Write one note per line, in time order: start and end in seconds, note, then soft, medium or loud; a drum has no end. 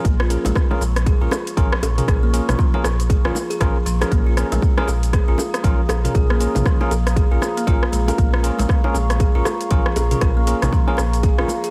0.05 0.37 A#1 loud
0.05 0.13 A#3 medium
0.05 11.70 G#4 medium
0.05 11.70 F5 medium
0.05 11.70 A#5 medium
0.05 4.11 C#6 medium
0.05 kick loud
0.05 closed hi-hat medium
0.05 shaker soft
0.20 0.25 F4 medium
0.20 cross-stick loud
0.30 0.67 C#4 medium
0.30 0.67 F4 medium
0.30 0.67 G#4 medium
0.30 0.67 A#4 medium
0.30 closed hi-hat medium
0.30 shaker medium
0.45 0.52 A#1 loud
0.45 0.55 G#3 loud
0.45 closed hi-hat soft
0.45 low bongo medium
0.45 shaker medium
0.56 kick loud
0.56 cross-stick medium
0.56 shaker soft
0.71 0.82 C#4 medium
0.71 0.82 F4 medium
0.71 0.82 G#4 medium
0.71 0.82 A#4 loud
0.71 low bongo medium
0.81 1.13 A#1 medium
0.81 high bongo medium
0.81 shaker medium
0.96 cross-stick medium
0.96 closed hi-hat soft
0.96 shaker soft
1.06 1.15 G#4 medium
1.06 kick loud
1.06 closed hi-hat medium
1.06 shaker soft
1.22 1.28 A#1 loud
1.22 1.33 C#4 medium
1.22 1.33 F4 medium
1.22 1.27 F4 medium
1.22 1.33 G#4 medium
1.22 1.33 A#4 medium
1.31 cross-stick medium
1.31 high bongo loud
1.31 low bongo medium
1.31 shaker medium
1.47 closed hi-hat soft
1.47 shaker medium
1.57 1.67 A#1 loud
1.57 1.71 F3 medium
1.57 1.73 C#4 loud
1.57 1.73 F4 medium
1.57 1.73 G#4 medium
1.57 1.73 A#4 loud
1.57 kick loud
1.57 closed hi-hat medium
1.57 shaker soft
1.72 cross-stick loud
1.82 2.01 A#1 medium
1.82 closed hi-hat soft
1.82 high bongo loud
1.82 shaker medium
1.98 2.31 C#4 medium
1.98 2.31 F4 medium
1.98 2.31 G#4 medium
1.98 2.31 A#4 medium
1.98 closed hi-hat soft
1.98 mid tom medium
1.98 shaker medium
2.08 2.40 A#1 loud
2.08 2.16 G#4 medium
2.08 kick loud
2.08 cross-stick medium
2.08 closed hi-hat medium
2.08 shaker soft
2.23 2.32 A#3 medium
2.33 2.42 A#3 medium
2.33 2.71 C#4 medium
2.33 2.71 F4 medium
2.33 2.71 G#4 medium
2.33 2.71 A#4 medium
2.33 closed hi-hat medium
2.33 shaker medium
2.49 2.55 A#1 loud
2.49 cross-stick medium
2.49 closed hi-hat soft
2.49 mid tom medium
2.49 low bongo medium
2.49 shaker medium
2.59 2.73 F3 loud
2.59 kick loud
2.59 shaker soft
2.74 2.86 C#4 loud
2.74 2.86 F4 medium
2.74 2.86 G#4 medium
2.74 2.86 A#4 loud
2.74 low bongo loud
2.84 3.17 A#1 medium
2.84 cross-stick medium
2.84 high bongo medium
2.84 shaker loud
3.00 closed hi-hat soft
3.00 shaker medium
3.10 3.18 G#4 medium
3.10 kick loud
3.10 closed hi-hat medium
3.10 shaker soft
3.25 3.32 A#1 loud
3.25 3.37 C#4 medium
3.25 3.34 F4 medium
3.25 3.37 F4 medium
3.25 3.37 G#4 medium
3.25 3.37 A#4 medium
3.25 cross-stick medium
3.35 low bongo medium
3.35 shaker medium
3.50 3.56 G#4 medium
3.50 closed hi-hat soft
3.50 shaker medium
3.60 3.71 A#1 loud
3.60 3.74 F3 loud
3.60 3.77 C#4 medium
3.60 3.77 F4 medium
3.60 3.77 G#4 medium
3.60 3.77 A#4 loud
3.60 kick loud
3.60 cross-stick medium
3.60 closed hi-hat medium
3.60 shaker soft
3.86 4.04 A#1 medium
3.86 3.94 F3 medium
3.86 closed hi-hat soft
3.86 shaker medium
4.01 4.35 C#4 medium
4.01 4.35 F4 medium
4.01 4.35 G#4 medium
4.01 4.35 A#4 medium
4.01 cross-stick loud
4.01 closed hi-hat soft
4.01 high bongo medium
4.01 low bongo medium
4.01 shaker medium
4.11 4.44 A#1 loud
4.11 4.20 A#3 medium
4.11 8.17 D#6 medium
4.11 kick loud
4.11 closed hi-hat medium
4.11 shaker soft
4.27 4.32 F4 medium
4.37 4.74 C#4 medium
4.37 4.74 F4 medium
4.37 4.74 G#4 medium
4.37 4.74 A#4 medium
4.37 cross-stick medium
4.37 closed hi-hat medium
4.37 shaker medium
4.52 4.59 A#1 loud
4.52 4.61 G#3 loud
4.52 closed hi-hat soft
4.52 low bongo medium
4.52 shaker medium
4.62 kick loud
4.62 shaker soft
4.78 4.89 C#4 medium
4.78 4.89 F4 medium
4.78 4.89 G#4 medium
4.78 4.89 A#4 loud
4.78 cross-stick medium
4.78 low bongo medium
4.88 5.20 A#1 medium
4.88 high bongo medium
4.88 shaker loud
5.03 closed hi-hat soft
5.03 shaker medium
5.13 5.21 G#4 medium
5.13 kick loud
5.13 cross-stick medium
5.13 closed hi-hat soft
5.13 shaker soft
5.28 5.35 A#1 loud
5.28 5.40 C#4 medium
5.28 5.34 F4 medium
5.28 5.40 F4 medium
5.28 5.40 G#4 medium
5.28 5.40 A#4 medium
5.38 high bongo loud
5.38 low bongo medium
5.38 shaker loud
5.54 cross-stick medium
5.54 closed hi-hat soft
5.54 shaker medium
5.64 5.74 A#1 loud
5.64 5.78 F3 loud
5.64 5.80 C#4 loud
5.64 5.80 F4 medium
5.64 5.80 G#4 medium
5.64 5.80 A#4 loud
5.64 kick loud
5.64 closed hi-hat medium
5.64 shaker soft
5.89 6.08 A#1 medium
5.89 cross-stick medium
5.89 closed hi-hat soft
5.89 high bongo loud
5.89 shaker medium
6.05 6.38 C#4 medium
6.05 6.38 F4 medium
6.05 6.38 G#4 medium
6.05 6.38 A#4 medium
6.05 closed hi-hat soft
6.05 mid tom medium
6.05 shaker medium
6.15 6.47 A#1 loud
6.15 6.23 G#4 medium
6.15 kick loud
6.15 closed hi-hat medium
6.15 shaker soft
6.30 6.39 A#3 medium
6.30 cross-stick medium
6.40 6.48 A#3 medium
6.40 6.77 C#4 medium
6.40 6.77 F4 medium
6.40 6.77 G#4 medium
6.40 6.77 A#4 medium
6.40 closed hi-hat medium
6.40 shaker loud
6.55 6.62 A#1 loud
6.55 closed hi-hat soft
6.55 mid tom medium
6.55 low bongo medium
6.55 shaker medium
6.66 6.79 F3 loud
6.66 kick loud
6.66 cross-stick medium
6.66 shaker soft
6.81 6.92 C#4 loud
6.81 6.92 F4 medium
6.81 6.92 G#4 medium
6.81 6.93 A#4 loud
6.81 low bongo medium
6.91 7.24 A#1 medium
6.91 closed hi-hat soft
6.91 high bongo medium
6.91 shaker loud
7.07 cross-stick medium
7.07 closed hi-hat soft
7.07 shaker medium
7.16 7.25 G#4 medium
7.16 kick loud
7.16 closed hi-hat soft
7.16 shaker soft
7.32 7.39 A#1 loud
7.32 7.43 C#4 medium
7.32 7.43 F4 medium
7.32 7.41 F4 medium
7.32 7.43 G#4 medium
7.32 7.43 A#4 medium
7.42 cross-stick medium
7.42 low bongo medium
7.42 shaker loud
7.57 7.66 A#3 medium
7.57 closed hi-hat soft
7.57 shaker medium
7.67 7.77 A#1 loud
7.67 7.84 C#4 loud
7.67 7.81 F4 loud
7.67 7.83 F4 medium
7.67 7.83 G#4 medium
7.67 7.83 A#4 loud
7.67 kick loud
7.67 closed hi-hat medium
7.67 shaker soft
7.83 cross-stick medium
7.92 8.11 A#1 medium
7.92 8.06 G#3 loud
7.92 closed hi-hat soft
7.92 shaker medium
8.08 8.41 C#4 medium
8.08 8.41 F4 medium
8.08 8.41 G#4 medium
8.08 8.41 A#4 medium
8.08 closed hi-hat soft
8.08 high bongo medium
8.08 low bongo medium
8.08 shaker medium
8.18 8.51 A#1 loud
8.18 8.27 A#3 medium
8.18 11.70 C#6 medium
8.18 kick loud
8.18 closed hi-hat medium
8.18 shaker soft
8.33 8.39 F4 medium
8.33 cross-stick medium
8.44 8.81 C#4 medium
8.44 8.81 F4 medium
8.44 8.81 G#4 medium
8.44 8.81 A#4 medium
8.44 closed hi-hat medium
8.44 shaker medium
8.59 8.66 A#1 loud
8.59 8.68 G#3 medium
8.59 closed hi-hat soft
8.59 low bongo medium
8.59 shaker medium
8.69 kick loud
8.69 cross-stick medium
8.69 shaker soft
8.84 8.96 C#4 medium
8.84 8.96 F4 medium
8.84 8.96 G#4 medium
8.84 8.96 A#4 loud
8.84 low bongo medium
8.94 9.27 A#1 medium
8.94 high bongo medium
8.94 shaker loud
9.10 cross-stick medium
9.10 closed hi-hat soft
9.10 shaker medium
9.20 9.28 G#4 medium
9.20 kick loud
9.20 closed hi-hat medium
9.20 shaker soft
9.35 9.42 A#1 loud
9.35 9.47 C#4 medium
9.35 9.47 F4 medium
9.35 9.41 F4 medium
9.35 9.47 G#4 medium
9.35 9.47 A#4 medium
9.45 cross-stick medium
9.45 high bongo loud
9.45 low bongo medium
9.45 shaker medium
9.61 closed hi-hat soft
9.61 shaker soft
9.71 9.81 A#1 loud
9.71 9.84 F3 medium
9.71 9.87 C#4 loud
9.71 9.87 F4 medium
9.71 9.87 G#4 medium
9.71 9.87 A#4 loud
9.71 kick loud
9.71 closed hi-hat medium
9.71 shaker soft
9.86 cross-stick medium
9.96 10.15 A#1 medium
9.96 closed hi-hat soft
9.96 high bongo loud
9.96 shaker medium
10.11 10.45 C#4 medium
10.11 10.45 F4 medium
10.11 10.45 G#4 medium
10.11 10.45 A#4 medium
10.11 closed hi-hat soft
10.11 mid tom medium
10.11 shaker medium
10.21 10.54 A#1 loud
10.21 10.30 G#4 medium
10.21 kick loud
10.21 cross-stick medium
10.21 closed hi-hat medium
10.21 shaker soft
10.37 10.46 A#3 medium
10.47 10.55 A#3 medium
10.47 10.84 C#4 medium
10.47 10.84 F4 medium
10.47 10.84 G#4 medium
10.47 10.84 A#4 medium
10.47 closed hi-hat medium
10.47 shaker medium
10.62 10.69 A#1 loud
10.62 cross-stick medium
10.62 closed hi-hat soft
10.62 mid tom loud
10.62 low bongo medium
10.62 shaker medium
10.73 10.86 F3 loud
10.73 kick loud
10.73 shaker soft
10.88 10.99 C#4 loud
10.88 10.99 F4 medium
10.88 10.99 G#4 medium
10.88 10.99 A#4 loud
10.88 low bongo medium
10.97 11.30 A#1 medium
10.97 cross-stick medium
10.97 high bongo medium
10.97 shaker medium
11.13 closed hi-hat soft
11.13 shaker soft
11.23 11.32 G#4 medium
11.23 kick loud
11.23 closed hi-hat medium
11.23 shaker soft
11.38 11.45 A#1 loud
11.38 11.50 C#4 medium
11.38 11.48 F4 medium
11.38 11.50 F4 medium
11.38 11.50 G#4 medium
11.38 11.50 A#4 medium
11.38 cross-stick medium
11.48 low bongo medium
11.48 shaker medium
11.64 11.69 G#4 medium
11.64 closed hi-hat soft
11.64 shaker soft